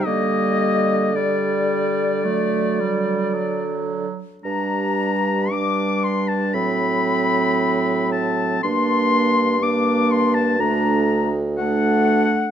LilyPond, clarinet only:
\new Staff \with { instrumentName = "Clarinet" } { \time 4/4 \key g \minor \tempo 4 = 57 bes4 g4 a8 g8 fis4 | d'4 d'4 c'2 | d'4 d'4 d'8. r16 d'4 | }